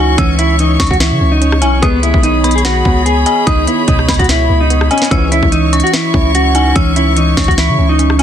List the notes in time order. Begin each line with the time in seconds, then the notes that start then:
Already playing: C#2 E3 C#4 D#4 F#4 C#5 G#5 C#6
0.18 C#2 E3 C#4 E6, kick, closed hi-hat
0.39 C#4 E4, closed hi-hat
0.59 E3 D#4, closed hi-hat
0.80 C#2 C#4 C#6, kick, snare, closed hi-hat
0.87 F#4, closed hi-hat
0.91 C#2, kick, closed hi-hat
1.00 E3 E4, snare, closed hi-hat
1.11 C#3
1.21 C#2 C#4
1.32 D#4
1.42 C#4, closed hi-hat
1.52 cross-stick
1.61 B1 C#4 E4 G#5, closed hi-hat
1.82 C#2 D#2 B2 D#3 G#3 B3 G#4 B5 D#6, kick, closed hi-hat
2.03 B3 E4, closed hi-hat
2.14 B1, kick
2.23 D#3 D#4, closed hi-hat
2.44 B3 B5, closed hi-hat
2.51 closed hi-hat
2.56 G#4, closed hi-hat
2.65 D#3 F#4, snare, closed hi-hat
2.85 C#2 B3, kick
3.06 B3 G#4, closed hi-hat
3.26 D#5 G#5, closed hi-hat
3.47 C#2 D#3 D#4 D#6, kick, closed hi-hat
3.67 B3 E4, closed hi-hat
3.88 C#2 B2 D#4, kick, closed hi-hat
3.99 cross-stick
4.08 C#2 B3 B5, kick, snare, closed hi-hat
4.14 closed hi-hat
4.19 C#2 F#4, kick, closed hi-hat
4.24 closed hi-hat
4.29 E4, snare, closed hi-hat
4.50 C#2 B3
4.61 D#4
4.70 B3, closed hi-hat
4.81 cross-stick
4.91 C#4 D#5 G#5, closed hi-hat
4.98 closed hi-hat
5.02 snare, closed hi-hat
5.11 C#2 G#2 E3 C#4 C#6 E6, kick, closed hi-hat
5.32 C#4 E4, closed hi-hat
5.43 C#2, kick
5.52 E3 D#4, closed hi-hat
5.73 C#4 C#6, closed hi-hat
5.80 F#4, closed hi-hat
5.87 closed hi-hat
5.93 E3 E4, snare, closed hi-hat
6.14 C#2 C#4, kick
6.34 C#4 F#4, closed hi-hat
6.55 D#4 G#5, closed hi-hat
6.75 C#2 E3 C#4 E6, kick, closed hi-hat
6.96 C#4 E4, closed hi-hat
7.16 E3 D#4, closed hi-hat
7.37 C#2 C#4 C#6, kick, snare, closed hi-hat
7.44 F#4, closed hi-hat
7.48 C#2, kick, closed hi-hat
7.58 E3 E4, snare, closed hi-hat
7.69 C#3
7.78 C#2 C#4
7.89 D#4
7.99 C#4, closed hi-hat
8.10 cross-stick
8.19 B1 C#4 E4 G#5, closed hi-hat